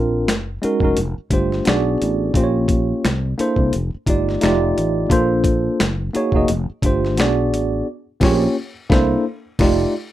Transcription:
Already playing: A#1 C4 D4 F4 A#4 F5
0.28 F#1, finger snap, snare, closed hi-hat
0.62 G#3 C#4 D#4 F#4 A#4, muted fretless electric bass stroke, closed hi-hat
0.80 F1 G#3 C#4 D#4 F#4, kick
0.85 A#4
0.97 F1, closed hi-hat
1.18 muted fretless electric bass stroke
1.30 G1 A3 D4 F4 G4 C5, kick, closed hi-hat
1.52 snare
1.65 B1 B3 D4 F#4 G#4 D5, finger snap, snare, closed hi-hat
2.02 A1, closed hi-hat
2.34 A#1 A#3 C#4 F4 G4 C5, kick, closed hi-hat
2.44 C#5
2.68 kick, closed hi-hat
3.05 C2, finger snap, snare, closed hi-hat
3.38 A#3 D4 E4 A4 C5, muted fretless electric bass stroke, closed hi-hat
3.56 C2, kick
3.73 F1, closed hi-hat
3.94 muted fretless electric bass stroke
4.06 G1 A3 D#4 F4 G4 D5, kick, closed hi-hat
4.29 snare
4.41 F1 A3 D#4 F4 G4 D5, finger snap, snare, closed hi-hat
4.77 A1, closed hi-hat
5.10 A#1 A#3 D4 F4 A4 C5, kick, closed hi-hat
5.44 kick, closed hi-hat
5.80 F#1, finger snap, snare, closed hi-hat
6.13 A#3 D#4 F#4 G#4 C#5, muted fretless electric bass stroke, closed hi-hat
6.32 F1 A#3 D#4 F#4 G#4, kick
6.37 D#5
6.48 F1, closed hi-hat
6.69 muted fretless electric bass stroke
6.82 G1 A3 D4 F4 G4 C5, kick, closed hi-hat
7.05 snare
7.17 B1 B3 D4 F#4 G#4 D5, finger snap, snare, closed hi-hat
7.53 A1, closed hi-hat
8.20 A#1 A#3 C#4 F4 G4 C#5, kick, snare, crash
8.89 C2 A#3 D4 E4 A4 C5, kick, snare
9.59 F1 A3 D#4 F4 G4 D5, kick, snare, crash

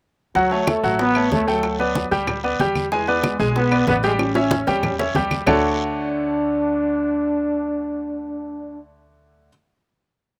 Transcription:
0.35 D2 F#3 F#4 F#5, high bongo, high conga, long guiro
0.51 A3 A4 C#5, high bongo, high conga
0.67 A3, high bongo, high conga, short guiro, claves
0.83 A1 F#3 F#4 F#5, high bongo, high conga, short guiro
0.99 B3, high bongo, high conga, long guiro
1.15 A3 A4 C#5, high conga, claves
1.31 D2 A3 A4 C#5, high bongo, low bongo, high conga, short guiro
1.47 F#3 A3 A4 G5, high bongo, high conga, short guiro
1.63 high bongo, high conga, long guiro, claves
1.79 B3 B4 D5, high bongo, high conga
1.95 high bongo, high conga, short guiro
2.11 D2 G3 G4 G5, high bongo, high conga, short guiro
2.27 high bongo, high conga, low conga, long guiro, claves
2.44 B3 B4 D5, high conga
2.60 E2 G3 G4 G5, high bongo, low bongo, high conga, short guiro
2.75 high bongo, high conga, short guiro, claves
2.92 E3 G#3 G#4 G#5, high bongo, high conga, long guiro
3.08 B3 B4 D5, high bongo, high conga
3.24 G#3, high bongo, high conga, short guiro, claves
3.39 B1 G#3 G#4 G#5, high bongo, high conga, short guiro
3.56 B3, high bongo, high conga, long guiro
3.71 B3 B4 D5, high conga, claves
3.87 A1 B3 B4 D5, high bongo, low bongo, high conga, short guiro
4.03 G3 G#3 G4 G5, high bongo, high conga, short guiro
4.19 C#4, high bongo, high conga, long guiro, claves
4.35 C#4 C#5 E5, high bongo, high conga
4.51 high bongo, high conga, short guiro
4.67 E2 G3 G4 G5, low bongo, high conga, short guiro
4.83 low bongo, high conga, low conga, long guiro, claves
4.99 C#4 C#5 E5, low bongo, high conga
5.15 D2 G3 G4 G5, low bongo, high conga, short guiro
5.31 low bongo, high conga, short guiro, claves
5.46 D2 D3 A3 D4 F#4 A4 C#5, low bongo, low conga, long guiro, claves

